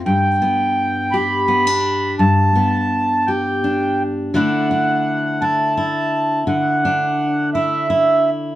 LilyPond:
<<
  \new Staff \with { instrumentName = "Accordion" } { \time 6/8 \key g \major \tempo 4. = 56 g''4. b''4. | a''4. g''4 r8 | fis''4. a''4. | fis''4. e''4 r8 | }
  \new Staff \with { instrumentName = "Steel-string acoustic guitar" } { \time 6/8 \key g \major << { r8 b4 g'8 b16 d'8. | r8 b4 g'8 d'4 | <a d' e'>8 d'4 e'8 e'4~ | e'8 d'4 e'8 e'4 | } \\ { g,2. | g,2. | d2. | d2. | } >> }
>>